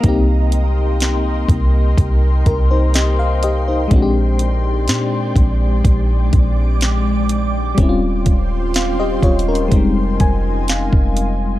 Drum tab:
HH |x-----x-----x-----x-----x-----x-----x-----x-----|x-----x-----x-----x-----x-----x-----x-----x-----|x-----x-----x-----x-x-x-x-----x-----x-----x-----|
SD |------------o-----------------------o-----------|------------o-----------------------o-----------|------------o-----------------------o-----------|
BD |o-----------------o-----o-----o-----------------|o-----------------o-----o-----o-----------------|o-----o-----------o-----o-----o--------o--------|